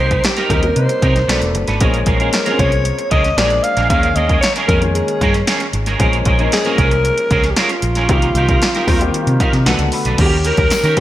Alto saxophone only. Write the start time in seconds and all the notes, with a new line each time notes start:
Already playing: C5
0.25 G4
0.51 A#4
0.77 C5
2.34 A#4
2.60 C#5
3.12 D#5
3.37 D5
3.63 F5
3.90 F5
4.16 D#5
4.41 C#5
4.68 A#4
4.95 G#4
6.53 G#4
6.79 A#4
7.32 A#4
7.50 G4
7.59 F4
10.21 G4
10.47 A#4